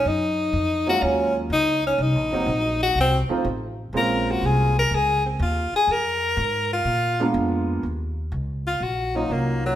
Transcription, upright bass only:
X:1
M:4/4
L:1/8
Q:"Swing" 1/4=123
K:Bbm
V:1 name="Upright bass" clef=bass
G,,2 F,,2 E,,2 D,,2 | (3C,, B,,, G,,, B,,,2 C,, z =A,,,2 | B,,,2 C,,2 D,,2 E,, z | F,,2 A,,2 B,,2 F,,2 |
E,,2 D,,2 B,,,2 C,,2 |]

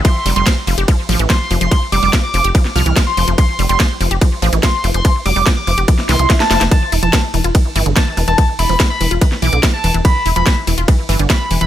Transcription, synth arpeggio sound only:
X:1
M:4/4
L:1/16
Q:1/4=144
K:Flyd
V:1 name="Synth arpeggio sound" clef=bass
F, z G, G, F, z F, G F, z F, E, F, z F, F, | F, z G, G, F, z F, G F, z F, E, F, z F, F, | F, z G, G, F, z F, G F, z F, E, F, z F, F, | F, z G, G, F, z F, G F, z E, F, F, z F, F, |
E, z E F, E, z E, F E, z E, D, E, z E, E, | E, z E F, E, z E, F E, z E, D, E, z E, E, | E, z E F, E, z E, F E, z E, D, E, z E, E, |]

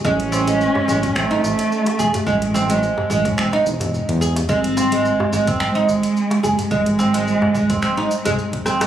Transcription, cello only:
X:1
M:4/4
L:1/16
Q:"Swing 16ths" 1/4=108
K:none
V:1 name="Cello" clef=bass
^C8 A,8 | ^G,3 ^F, G,8 z4 | ^B,6 z2 ^G,8 | ^G,12 z4 |]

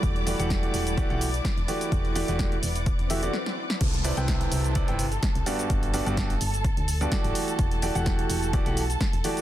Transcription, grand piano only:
X:1
M:4/4
L:1/16
Q:"Swing 16ths" 1/4=127
K:Em
V:1 name="Grand piano"
[E,A,FGd]2 [E,A,FGd] [E,A,FGf]4- [E,A,FGf] [E,A,FGd] [E,A,FGf] z4 [E,A,FGd]2- | [E,A,FGd]2 [E,A,FGd] [E,A,FGd]2 z4 z [E,A,FGe] [E,A,FGd] z4 | z2 [C,CEBd] [C,CEBg]4- [C,CEBg] [C,CEBd] [C,CEBg] z4 [G,,B,FGd]2- | [G,,B,FGd]2 [G,,B,FGd] [G,,B,FGd]2 z6 [G,,B,FGd] [E,A,FGd]4- |
[E,A,FGd]2 [E,A,FGd] [E,A,FGf]4- [E,A,FGf] [E,A,FGd] [E,A,FGf] z4 [E,A,FGd]2 |]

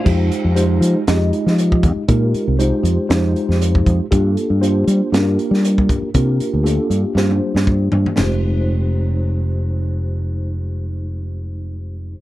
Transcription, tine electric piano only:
X:1
M:4/4
L:1/8
Q:"Swing 16ths" 1/4=118
K:Fdor
V:1 name="Tine electric piano"
[A,EFGc]2 [A,EFGc]2 [A,EFGe]4 | [A,EFGB]2 [A,EFGc]2 [A,EFGc]4 | [B,DFG=A]2 [B,DFGc]2 [B,DFGB]4 | [B,DFGB]2 [B,DFG=A]2 [B,DFGc]4 |
[A,EFGc]8- | [A,EFGc]8 |]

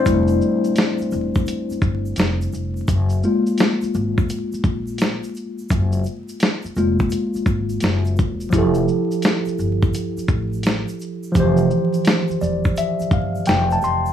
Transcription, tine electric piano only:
X:1
M:4/4
L:1/16
Q:"Swing 16ths" 1/4=85
K:F
V:1 name="Tine electric piano"
[Cc]12- [Cc]2 z2 | z16 | z16 | z16 |
z6 d2 e2 f2 g a c'2 |]
V:2 name="Tine electric piano"
[G,A,E]16 | z2 [_A,B,F]6 z8 | z6 [_A,B,F]8- [A,B,F]2 | [F,EGA]16 |
[E,F,Gc]16 |]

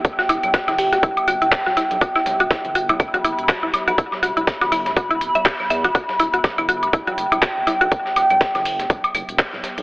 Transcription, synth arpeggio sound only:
X:1
M:4/4
L:1/16
Q:"Swing 16ths" 1/4=122
K:Em
V:1 name="Synth arpeggio sound"
z F E z F E z F E z F E z F E z | F E z F E z F E z F E z F E z F | E z F E z F E z F E z e G z e F | F z E F z E F z E F z E F z E F |
z16 |]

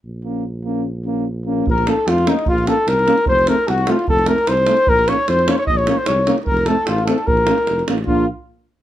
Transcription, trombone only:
X:1
M:2/4
L:1/8
Q:"Swing 16ths" 1/4=150
K:Bbm
V:1 name="Trombone"
z B, z B, | z B, z B, | z B, z B, | z B, z B, |
z =A, z A, | z =A, z A, | z B, z B, | z B, z B, |
z =A, z A, | z B, z B, | B, z3 |]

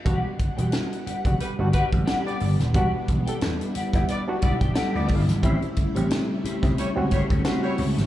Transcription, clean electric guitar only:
X:1
M:4/4
L:1/16
Q:"Swing 16ths" 1/4=89
K:Edor
V:1 name="Clean electric guitar"
[Gdf] z2 [Gdg] z2 [Gdf] [Gdf] z2 [Gdf] z [Gdf]2 z2 | [Gdf] z2 [Gdg] z2 [Gdf] [Gdf] z2 [Gdf] [Gdg] [Gdf]2 z2 | [CG^B] z2 [CGc] z2 [CGB] [CGB] z2 [CGB] [CGc] [CGB]2 z2 |]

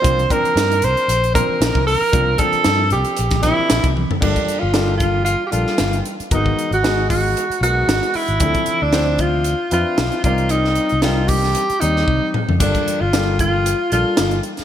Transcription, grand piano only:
X:1
M:4/4
L:1/8
Q:"Swing 16ths" 1/4=115
K:Cmix
V:1 name="Grand piano"
[F,B,CDF] [F,B,CDB]3 z [F,B,CDB]2 z | [F,B,CDF] [F,B,CDA]3 z [F,B,CDG]2 z | [G,B,DFA] z [G,B,DFA]2 z [G,B,DFA]2 z | [_A,_C_E_GB] z [A,CEG_A]2 z [A,CEGB]2 z |
[F,CDEA] z [F,CDEc]2 z [F,CD=Be]2 [G,C_E_Bd]- | [G,C_EBd] z [G,CDEB]2 z [G,CEGd]2 z | [G,B,DFA] z [G,B,DFA]2 z [G,B,DFA]2 z |]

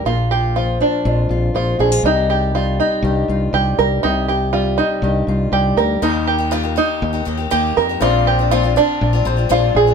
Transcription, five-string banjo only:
X:1
M:4/4
L:1/8
Q:1/4=121
K:Bb
V:1 name="Five-string banjo"
F G F D2 z F _A | E G F E2 z G B | E G F E2 z G B | E G F E2 z G B |
F G F D2 z F _A |]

